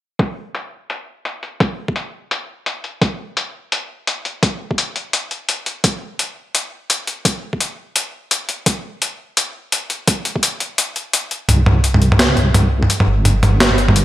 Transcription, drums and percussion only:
0.19 kick, closed hi-hat
0.55 closed hi-hat
0.90 closed hi-hat
1.25 closed hi-hat
1.43 closed hi-hat
1.60 kick, closed hi-hat
1.88 kick
1.96 closed hi-hat
2.31 closed hi-hat
2.66 closed hi-hat
2.84 closed hi-hat
3.02 kick, closed hi-hat
3.37 closed hi-hat
3.72 closed hi-hat
4.07 closed hi-hat
4.25 closed hi-hat
4.43 kick, closed hi-hat
4.71 kick
4.78 closed hi-hat
4.96 closed hi-hat
5.13 closed hi-hat
5.31 closed hi-hat
5.49 closed hi-hat
5.66 closed hi-hat
5.84 kick, closed hi-hat
6.19 closed hi-hat
6.55 closed hi-hat
6.90 closed hi-hat
7.07 closed hi-hat
7.25 kick, closed hi-hat
7.53 kick
7.61 closed hi-hat
7.96 closed hi-hat
8.31 closed hi-hat
8.49 closed hi-hat
8.66 kick, closed hi-hat
9.02 closed hi-hat
9.37 closed hi-hat
9.72 closed hi-hat
9.90 closed hi-hat
10.08 kick, closed hi-hat
10.25 closed hi-hat
10.36 kick
10.43 closed hi-hat
10.60 closed hi-hat
10.78 closed hi-hat
10.96 closed hi-hat
11.13 closed hi-hat
11.31 closed hi-hat
11.49 closed hi-hat, mid tom
11.66 mid tom
11.84 closed hi-hat
11.94 mid tom
12.02 closed hi-hat
12.12 mid tom
12.19 snare, closed hi-hat
12.37 closed hi-hat, mid tom
12.54 closed hi-hat, mid tom
12.83 mid tom
12.90 closed hi-hat
13.00 mid tom
13.25 closed hi-hat, mid tom
13.43 closed hi-hat, mid tom
13.60 snare, closed hi-hat
13.71 mid tom
13.78 closed hi-hat
13.88 mid tom
13.96 closed hi-hat

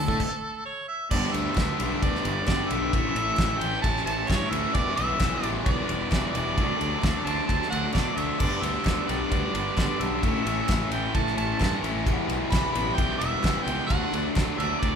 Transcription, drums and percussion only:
0.08 kick, snare
0.20 kick, crash
1.11 kick, crash
1.34 ride
1.56 kick, snare, clap, ride
1.80 ride
2.02 kick, ride
2.15 snare
2.25 ride
2.48 kick, snare, clap, ride
2.71 ride
2.93 kick, ride
3.16 ride
3.37 kick, snare, clap, ride
3.61 ride
3.84 kick, ride
3.97 snare
4.07 ride
4.28 kick, snare, clap, ride
4.53 ride
4.75 kick, ride
4.97 ride
5.20 kick, snare, clap, ride
5.43 ride
5.66 kick, ride
5.89 ride
6.12 kick, snare, clap, ride
6.35 ride
6.58 kick, ride
6.81 ride
7.03 kick, snare, clap, ride
7.27 ride
7.49 kick, ride
7.62 snare
7.72 ride
7.94 kick, snare, clap, ride
8.18 ride
8.40 kick, crash
8.63 ride
8.85 kick, snare, clap, ride
9.09 ride
9.32 kick, ride
9.55 ride
9.77 kick, snare, clap, ride
10.01 ride
10.23 kick, ride
10.47 ride
10.68 kick, snare, clap, ride
10.92 ride
11.15 kick, ride
11.27 snare
11.38 ride
11.60 kick, snare, clap, ride
11.84 ride
12.07 kick, ride
12.29 ride
12.52 kick, snare, clap, ride
12.75 ride
12.98 kick, ride
13.21 ride
13.44 kick, snare, clap, ride
13.68 ride
13.90 kick, ride
14.14 ride
14.36 kick, snare, clap, ride
14.60 ride
14.83 kick, ride

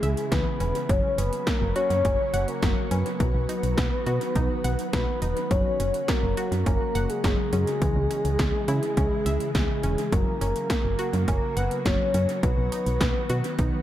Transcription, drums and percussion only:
0.03 closed hi-hat
0.17 closed hi-hat
0.32 kick, snare, closed hi-hat
0.60 closed hi-hat
0.75 closed hi-hat
0.89 kick, closed hi-hat
1.18 closed hi-hat
1.33 closed hi-hat
1.47 kick, snare, closed hi-hat
1.76 closed hi-hat
1.90 closed hi-hat
2.05 kick, closed hi-hat
2.34 closed hi-hat
2.48 closed hi-hat
2.62 kick, snare, closed hi-hat
2.91 closed hi-hat
3.06 closed hi-hat
3.20 kick, closed hi-hat
3.49 closed hi-hat
3.63 closed hi-hat
3.78 kick, snare, closed hi-hat
4.06 closed hi-hat
4.21 closed hi-hat
4.36 kick, closed hi-hat
4.64 closed hi-hat
4.79 closed hi-hat
4.93 kick, snare, closed hi-hat
5.22 closed hi-hat
5.37 closed hi-hat
5.51 kick, closed hi-hat
5.80 closed hi-hat
5.94 closed hi-hat
6.08 kick, snare, closed hi-hat
6.37 closed hi-hat
6.52 closed hi-hat
6.66 kick, closed hi-hat
6.95 closed hi-hat
7.10 closed hi-hat
7.24 kick, snare, closed hi-hat
7.53 closed hi-hat
7.67 closed hi-hat
7.82 kick, closed hi-hat
8.11 closed hi-hat
8.25 closed hi-hat
8.39 kick, snare, closed hi-hat
8.68 closed hi-hat
8.83 closed hi-hat
8.97 kick, closed hi-hat
9.26 closed hi-hat
9.40 closed hi-hat
9.55 kick, snare, closed hi-hat
9.83 closed hi-hat
9.98 closed hi-hat
10.12 kick, closed hi-hat
10.41 closed hi-hat
10.56 closed hi-hat
10.70 kick, snare, closed hi-hat
10.99 closed hi-hat
11.13 closed hi-hat
11.28 kick, closed hi-hat
11.57 closed hi-hat
11.71 closed hi-hat
11.86 kick, snare, closed hi-hat
12.14 closed hi-hat
12.29 closed hi-hat
12.43 kick, closed hi-hat
12.72 closed hi-hat
12.86 closed hi-hat
13.01 kick, snare, closed hi-hat
13.30 closed hi-hat
13.44 closed hi-hat
13.59 kick, closed hi-hat

